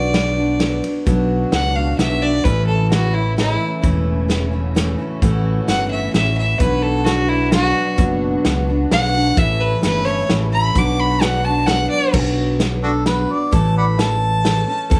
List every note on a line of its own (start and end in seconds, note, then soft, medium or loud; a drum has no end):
0.00 0.79 B1 medium
0.00 0.14 B2 medium
0.00 0.12 F#3 medium
0.00 0.13 B3 medium
0.00 0.14 D4 medium
0.00 0.14 F#4 medium
0.00 0.83 D5 medium
0.13 0.37 F#3 medium
0.13 0.38 B3 medium
0.13 0.37 D4 medium
0.13 0.36 F#4 medium
0.13 snare medium
0.13 ride medium
0.37 0.60 B3 soft
0.37 0.60 D4 soft
0.37 0.60 F#4 soft
0.59 0.83 F#3 medium
0.59 0.84 B3 medium
0.59 0.84 D4 medium
0.59 0.82 F#4 medium
0.59 snare medium
0.59 ride medium
0.83 1.06 B3 soft
0.83 1.06 D4 soft
0.83 1.07 F#4 soft
0.83 ride medium
1.06 1.44 B1 medium
1.06 1.53 B2 medium
1.06 2.45 B2 medium
1.06 1.50 F#3 medium
1.06 2.45 F#3 medium
1.06 1.51 B3 medium
1.06 1.52 D4 medium
1.06 2.45 D4 medium
1.06 1.53 F#4 medium
1.06 2.45 F#4 medium
1.06 kick loud
1.06 closed hi-hat medium
1.51 1.92 C#2 medium
1.51 1.75 F#3 medium
1.51 1.76 B3 medium
1.51 1.74 D4 medium
1.51 1.77 F#5 medium
1.51 snare medium
1.51 closed hi-hat medium
1.75 1.98 B3 soft
1.75 1.98 D4 soft
1.75 1.99 F#4 soft
1.75 1.98 F5 medium
1.98 2.39 B1 medium
1.98 2.22 F#3 medium
1.98 2.22 B3 medium
1.98 2.22 D4 medium
1.98 2.20 F#4 medium
1.98 2.23 E5 medium
1.98 snare medium
1.98 closed hi-hat medium
2.22 2.45 B3 soft
2.22 2.46 D4 soft
2.22 2.45 F#4 soft
2.22 2.45 D5 medium
2.44 3.56 A1 medium
2.44 6.57 A2 medium
2.44 2.92 A2 medium
2.44 6.57 C#3 medium
2.44 2.89 E3 medium
2.44 6.57 E3 medium
2.44 2.91 A3 medium
2.44 6.57 C#4 medium
2.44 2.91 C#4 medium
2.44 4.51 E4 medium
2.44 2.92 E4 medium
2.44 2.66 B4 medium
2.44 kick loud
2.44 closed hi-hat medium
2.67 2.90 A4 medium
2.90 3.36 E3 medium
2.90 3.37 A3 medium
2.90 3.38 C#4 medium
2.90 3.39 E4 medium
2.90 3.15 F#4 medium
2.90 snare medium
2.90 closed hi-hat medium
3.14 3.37 E4 medium
3.37 3.82 E3 medium
3.37 3.82 A3 medium
3.37 3.82 C#4 medium
3.37 3.83 E4 medium
3.37 snare medium
3.37 closed hi-hat medium
3.82 4.95 E1 medium
3.82 4.29 A2 medium
3.82 4.27 E3 medium
3.82 4.28 A3 medium
3.82 4.29 C#4 medium
3.82 4.29 E4 medium
3.82 kick loud
3.82 closed hi-hat medium
4.28 4.52 E3 medium
4.28 4.53 A3 medium
4.28 4.52 C#4 medium
4.28 4.50 E4 medium
4.28 snare medium
4.28 closed hi-hat medium
4.52 4.75 A3 soft
4.52 4.75 C#4 soft
4.52 4.76 E4 medium
4.52 6.59 F#4 medium
4.75 4.99 E3 medium
4.75 4.99 A3 medium
4.75 4.99 C#4 medium
4.75 4.97 E4 medium
4.75 snare medium
4.75 closed hi-hat medium
4.98 5.22 A3 soft
4.98 5.22 C#4 soft
4.98 5.22 E4 medium
5.22 5.59 A1 medium
5.22 5.69 A2 medium
5.22 5.66 E3 medium
5.22 5.67 A3 loud
5.22 5.68 C#4 medium
5.22 5.69 E4 medium
5.22 kick loud
5.22 closed hi-hat medium
5.68 6.08 G1 medium
5.68 6.12 E3 medium
5.68 6.13 A3 medium
5.68 6.13 C#4 medium
5.68 6.14 E4 medium
5.68 5.90 F#5 medium
5.68 snare medium
5.68 closed hi-hat medium
5.91 6.13 E5 medium
6.13 6.54 A1 medium
6.13 6.59 E3 medium
6.13 6.59 A3 medium
6.13 6.59 C#4 medium
6.13 6.60 E4 medium
6.13 6.36 E5 medium
6.13 snare medium
6.13 closed hi-hat medium
6.38 6.60 E5 medium
6.59 7.71 B1 medium
6.59 7.06 B2 medium
6.59 9.35 B2 medium
6.59 7.03 F#3 medium
6.59 9.34 F#3 medium
6.59 7.04 B3 medium
6.59 7.05 D4 medium
6.59 9.34 D4 medium
6.59 7.06 F#4 medium
6.59 9.34 F#4 medium
6.59 6.84 B4 medium
6.59 kick loud
6.59 closed hi-hat medium
6.82 7.06 A4 medium
7.04 7.50 F#3 medium
7.04 7.51 B3 medium
7.04 7.51 D4 medium
7.04 7.30 F#4 medium
7.04 7.52 F#4 medium
7.04 snare medium
7.04 closed hi-hat medium
7.29 7.52 E4 medium
7.51 7.97 F#3 medium
7.51 7.97 B3 medium
7.51 7.98 D4 medium
7.51 7.98 F#4 loud
7.51 7.98 F#4 medium
7.51 snare medium
7.51 closed hi-hat medium
7.97 8.36 F#1 medium
7.97 8.44 B2 medium
7.97 8.44 F#3 medium
7.97 8.44 B3 medium
7.97 8.45 D4 medium
7.97 8.45 F#4 medium
7.97 kick loud
7.97 closed hi-hat medium
8.45 8.84 C#2 medium
8.45 8.68 F#3 medium
8.45 8.68 B3 medium
8.45 8.68 D4 medium
8.45 8.66 F#4 medium
8.45 snare medium
8.45 closed hi-hat medium
8.68 8.91 B3 soft
8.68 8.92 D4 soft
8.68 8.91 F#4 medium
8.91 9.31 B1 medium
8.91 9.14 F#3 medium
8.91 9.15 B3 medium
8.91 9.13 D4 medium
8.91 9.13 F#4 medium
8.91 9.40 F#5 loud
8.91 snare medium
8.91 closed hi-hat medium
9.14 9.36 B3 soft
9.14 9.36 D4 soft
9.14 9.37 F#4 medium
9.36 9.74 A1 medium
9.36 9.83 A2 medium
9.36 10.74 A2 medium
9.36 10.75 C#3 medium
9.36 9.80 E3 medium
9.36 10.75 E3 medium
9.36 9.81 A3 medium
9.36 9.82 C#4 medium
9.36 10.75 C#4 medium
9.36 10.74 E4 medium
9.36 9.82 A4 medium
9.36 9.62 E5 medium
9.36 kick loud
9.36 closed hi-hat medium
9.60 9.83 B4 medium
9.81 10.23 G1 medium
9.81 10.05 E3 medium
9.81 10.05 A3 medium
9.81 10.04 C#4 medium
9.81 10.03 A4 medium
9.81 10.07 B4 medium
9.81 snare medium
9.81 closed hi-hat medium
10.04 10.28 A3 soft
10.04 10.28 C#4 soft
10.04 10.28 A4 medium
10.04 10.28 C#5 medium
10.27 10.69 A1 medium
10.27 10.52 E3 medium
10.27 10.52 A3 medium
10.27 10.51 C#4 medium
10.27 10.49 A4 medium
10.27 snare medium
10.27 closed hi-hat medium
10.51 10.75 A3 soft
10.51 10.75 C#4 soft
10.51 10.75 A4 soft
10.51 10.80 B5 loud
10.75 11.87 B1 medium
10.75 11.21 B2 medium
10.75 12.12 B2 medium
10.75 12.12 D3 medium
10.75 12.12 F#3 medium
10.75 11.20 F#3 medium
10.75 11.21 B3 medium
10.75 11.21 D4 medium
10.75 12.13 D4 medium
10.75 12.13 F#4 medium
10.75 11.22 F#4 medium
10.75 11.01 D6 medium
10.75 kick loud
10.75 closed hi-hat medium
11.00 11.24 B5 medium
11.21 11.44 F#3 medium
11.21 11.45 B3 medium
11.21 11.44 D4 medium
11.21 11.43 F#4 medium
11.21 11.46 F#5 medium
11.21 snare medium
11.21 closed hi-hat medium
11.44 11.68 B3 soft
11.44 11.68 D4 soft
11.44 11.67 F#4 medium
11.44 11.68 A5 medium
11.66 12.12 F#3 medium
11.66 12.12 B3 medium
11.66 12.13 D4 medium
11.66 12.13 F#4 medium
11.66 11.90 F#5 medium
11.66 snare medium
11.66 closed hi-hat medium
11.90 12.13 D5 loud
12.13 13.25 B1 medium
12.13 12.59 B2 medium
12.13 12.58 F#3 medium
12.13 12.59 B3 medium
12.13 12.60 D4 medium
12.13 12.60 F#4 medium
12.13 kick loud
12.13 crash loud
12.59 12.83 F#3 medium
12.59 12.83 B3 medium
12.59 12.83 D4 medium
12.59 12.82 F#4 medium
12.59 snare medium
12.59 closed hi-hat medium
12.83 13.07 B3 soft
12.83 12.91 D4 medium
12.83 13.07 D4 soft
12.83 13.06 F#4 soft
12.83 12.91 F#4 medium
12.83 13.05 A4 medium
13.06 13.29 F#3 medium
13.06 13.30 B3 medium
13.06 13.29 D4 medium
13.06 13.27 F#4 medium
13.06 13.33 B4 medium
13.06 snare medium
13.06 closed hi-hat medium
13.29 13.52 B3 soft
13.29 13.52 D4 soft
13.29 13.52 F#4 soft
13.29 13.56 D5 medium
13.51 14.63 A1 medium
13.51 13.98 A2 medium
13.51 13.96 E3 medium
13.51 13.97 A3 medium
13.51 13.98 C#4 medium
13.51 13.99 A4 medium
13.51 13.76 A5 medium
13.51 kick loud
13.51 closed hi-hat medium
13.78 13.86 D5 medium
13.78 13.86 F#5 medium
13.78 14.02 B5 medium
13.97 14.42 E3 medium
13.97 14.43 A3 medium
13.97 14.43 C#4 medium
13.97 14.44 A4 medium
13.97 15.00 A5 loud
13.97 snare medium
13.97 closed hi-hat medium
14.43 14.67 E3 medium
14.43 14.67 A3 medium
14.43 14.67 C#4 medium
14.43 14.66 A4 medium
14.43 snare medium
14.43 closed hi-hat medium
14.67 14.89 A3 soft
14.67 14.90 C#4 soft
14.67 14.90 A4 medium
14.90 15.00 E2 medium
14.90 15.00 A2 medium
14.90 15.00 E3 medium
14.90 15.00 A3 medium
14.90 15.00 C#4 loud
14.90 15.00 A4 loud
14.90 kick loud
14.90 closed hi-hat medium